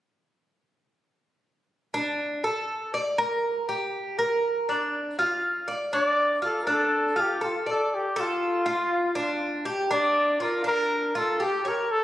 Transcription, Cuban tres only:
1.94 D4
2.44 A4
2.94 D5
3.18 A#4
3.69 G4
4.19 A#4
4.69 D4
5.19 F4
5.68 D5
5.93 D4
6.42 F4
6.67 D4
7.16 F4
7.41 A4
7.66 D5
8.16 A4
8.66 F4
9.15 D4
9.65 G4
9.91 D4
10.40 F4
10.64 D4
11.15 F4
11.40 G4
11.65 C#5

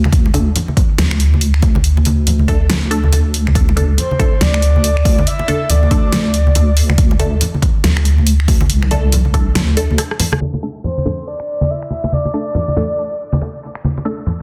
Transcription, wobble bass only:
Already playing: D2
0.12 D2
0.98 D2
1.84 D2
2.69 D2
3.55 D2
4.41 D2
5.70 D2
6.55 D2
6.98 D2
7.84 D2
8.70 C2
9.55 D2

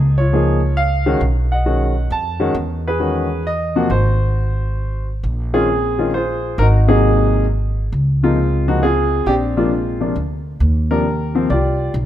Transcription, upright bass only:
Already playing: C#2
1.21 B1
2.10 F2
2.54 E2
3.90 G#1
5.23 A#1
6.58 G#1
7.92 C#2
9.26 A#1
10.16 D2
10.60 D#2
11.50 C2
11.94 B1

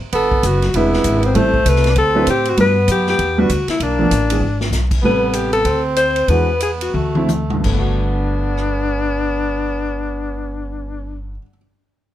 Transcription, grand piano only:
0.75 C3 G#3 D4 E4 B4
1.35 G3 A3 C4 E4 A4
2.15 F#3 C4 D4 E4 B4
2.58 G3 B3 D4 F#4 B4
3.38 G3 B3 D4 F#4 B4
3.99 F3 A3 B3 D4 A4
4.31 E3 G#3 B3 D4 G#4
5.04 C3 G3 B3 A4
6.30 E3 G#3 D4 F#4
7.16 D3 A3 C4 E4
7.53 G2
7.60 D3
7.66 A3
7.72 B3
7.78 F#4

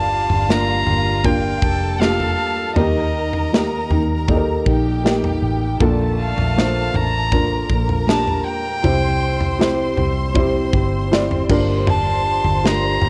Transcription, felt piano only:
Already playing: G2 A#3 D4 F4 G4
0.49 A#3 D4 F4 A#4
1.24 A#3 D4 F4 A#4
2.00 A#3 D4 F4 G4
2.76 D#3 A#3 D#4 G4 A#4
3.53 A#3 D#4 G4 A#4
4.29 A#3 D#4 G4 A4
4.37 A#4
5.04 A#3 D#4 G4 A#4
5.80 A#2 A#3 D4 F4 A4
6.56 A#3 D4 F4 C5
7.32 A#3 D4 F4 A#4
8.07 A#3 D4 F4 G4
8.83 C3 C4 E4 G4 C5
9.59 C4 E4 G4 C5
10.34 C4 E4 G4 C5
11.11 C4 E4 G4 D5
11.49 G2 D4 F4 G4 A#4
12.63 D4 F4 G4 A#4

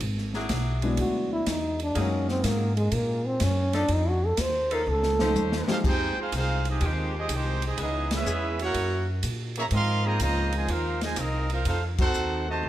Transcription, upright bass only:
0.01 G#1
0.50 B1
0.98 D2
1.47 E2
1.96 F#2
2.44 G#2
2.92 A#2
3.41 F#2
3.89 F2
4.38 D#2
4.87 C#2
5.35 D#2
5.69 muted upright bass stroke
5.84 F2
6.16 muted upright bass stroke
6.32 C2
6.81 D#2
7.29 C2
7.78 C#2
8.26 E2
8.75 F#2
9.23 A#2
9.71 G#2
10.20 C#2
10.68 D#2
11.17 C2
11.65 F2
12.14 D#2
12.63 C2

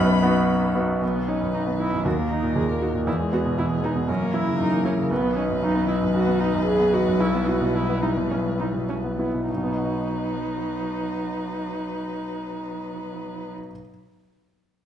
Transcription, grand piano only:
Already playing: B1 F#2 B3 D#4 F#4
0.23 B3 D#4 F#4
0.75 B3 D#4 F#4
1.02 B1
1.15 B3
1.28 D#4
1.41 F#2
1.53 B1
1.67 B3
1.79 D#4
1.93 F#2
2.05 D#2
2.18 A#3
2.30 D#4
2.43 A#2
2.56 D#2
2.69 A#3
2.82 D#4
2.94 A#2
3.07 E2
3.19 G#3
3.33 B3
3.45 B2
3.58 E2
3.70 G#3
3.83 B3
3.95 B2
4.08 F#2
4.21 A#3
4.34 E4
4.47 C#3
4.59 F#2
4.72 A#3
4.85 E4
4.98 C#3
5.11 B1
5.23 B3
5.36 D#4
5.49 F#2
5.62 B1
5.75 B3
5.88 D#4
6.01 F#2
6.14 B1
6.27 B3
6.40 D#4
6.53 F#2
6.67 B1
6.80 B3
6.93 D#4
7.07 F#2
7.20 B1
7.34 B3
7.47 E4
7.61 B2
7.75 B1
7.89 B3
8.03 E4
8.17 B2
8.31 B1
8.46 B3
8.60 E4
8.74 B2
8.89 B1
9.04 B3
9.19 E4
9.34 B2
9.50 B1
9.57 B2
9.64 B3
9.71 D#4
9.78 F#4
9.85 D#5

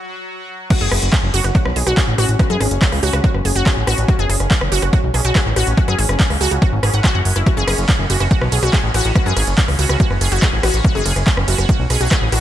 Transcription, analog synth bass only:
0.81 F#1
0.92 F#1
1.02 F#1
1.23 F#1
1.34 F#1
1.44 F#1
1.65 B1
1.76 B1
1.87 B1
2.08 A1
2.18 A1
2.29 A1
2.50 F#2
2.61 G#1
2.71 F#1
2.92 C#2
3.03 C#2
3.13 C#2
3.34 F#1
3.45 F#1
3.56 F#1
3.77 A1
3.87 A1
3.98 A1
4.19 F#1
4.30 F#1
4.40 F#1
4.61 F#1
4.72 F#1
4.82 F#1
5.03 B1
5.14 B1
5.25 B1
5.46 A1
5.56 A1
5.67 A1
5.88 F#2
5.99 G#1
6.09 F#1
6.30 C#2
6.41 C#2
6.51 C#2
6.72 G#1
6.83 G#1
6.94 G#1
7.15 F#1
7.25 F#1
7.36 F#1
7.57 F#1
7.68 F#1
7.78 F#1
7.99 F#1
8.10 F#1
8.20 F#1
8.42 B1
8.52 B1
8.63 B1
8.84 A1
8.94 A1
9.05 A1
9.26 F#2
9.37 G#1
9.47 F#1
9.68 C#2
9.79 C#2
9.89 C#2
10.11 F#1
10.21 F#1
10.32 F#1
10.53 A1
10.63 A1
10.74 A1
10.95 F#1
11.06 F#1
11.16 F#1
11.37 F#1
11.48 F#1
11.58 F#1
11.80 B1
11.90 B1
12.01 B1
12.22 A1
12.32 A1

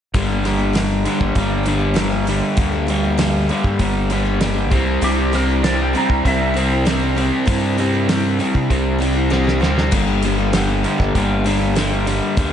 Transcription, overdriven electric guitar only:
0.14 G2 D3 G3
0.44 G2 D3 G3
0.75 G2 D3 G3
1.05 G2 D3 G3
1.37 G2 D3 G3
1.67 G2 D3 G3
1.97 G2 D3 G3
2.28 G2 D3 G3
2.59 G2 D3 G3
2.88 G2 D3 G3
3.19 G2 D3 G3
3.49 G2 D3 G3
3.80 G2 D3 G3
4.11 G2 D3 G3
4.42 G2 D3 G3
4.72 C3 G3 C4
5.03 C3 G3 C4
5.33 C3 G3 C4
5.63 C3 G3 C4
5.94 C3 G3 C4
6.25 C3 G3 C4
6.55 C3 G3 C4
6.86 C3 G3 C4
7.17 C3 G3 C4
7.48 C3 G3 C4
7.78 C3 G3 C4
8.08 C3 G3 C4
8.39 C3 G3 C4
8.70 C3 G3 C4
9.01 C3 G3 C4
9.31 C3 G3 C4
9.62 C3 G3 C4
9.93 G2 D3 G3
10.24 G2 D3 G3
10.54 G2 D3 G3
10.84 G2 D3 G3
11.16 G2 D3 G3
11.46 G2 D3 G3
11.77 G2 D3 G3
12.07 G2 D3 G3
12.38 G2 D3 G3

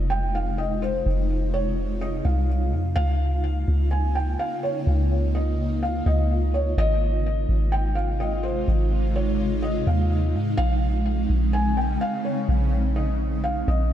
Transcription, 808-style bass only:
Already playing: F1
1.06 F1
2.25 C2
2.73 F2
2.96 C#2
3.68 C#2
4.87 C#2
6.06 C#2
6.77 G#1
7.49 G#1
8.68 G#1
9.87 D#2
10.34 G#2
10.58 A#1
11.29 A#1
12.48 A#1
13.68 A#1

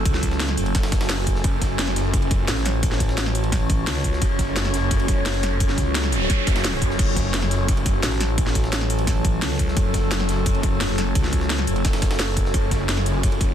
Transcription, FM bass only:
0.06 C#2
0.57 F#1
2.48 A1
3.87 C#2
5.78 C#2
6.47 F#1
8.03 A1
9.42 C#2
10.81 F#1
11.15 C#2
11.67 F#1

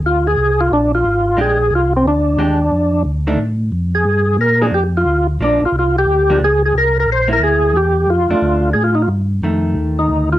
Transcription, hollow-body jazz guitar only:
1.37 G#3 D4 G4
2.39 G#3 D4 G4
3.27 D#3 A3 D4
4.61 F3 A#3 D4
5.41 F3 A#3 D4
6.30 F3 A#3 D4
7.28 A#3 E4
8.31 A3 D4
9.43 D#3 A3

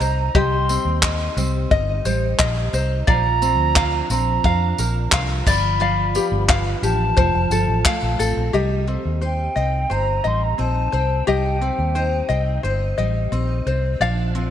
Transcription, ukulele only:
Already playing: C4 G4 D#5
0.01 C5
0.35 G4 D#5
0.70 C4
1.04 D#5
1.37 C4
1.71 D#5
2.05 C5
2.39 D#5
2.74 C5
3.07 D5 F5
3.42 C4
3.76 F5
4.11 C4
4.45 F5
4.79 A#4
5.13 F5
5.47 D5
5.81 D5 F5
6.16 G4
6.50 F5
6.83 G4
7.17 C5
7.52 A4
7.86 F5
8.19 A4
8.53 G4 D#5
8.88 C4
9.21 C5
9.56 D#5
9.90 C5
10.24 D#5
10.58 C4
10.92 C5
11.27 G4 D#5
11.61 C4
11.95 C5
12.29 D#5
12.63 C5
12.98 D#5
13.32 C4
13.67 C5
14.01 D5 F5
14.35 C4

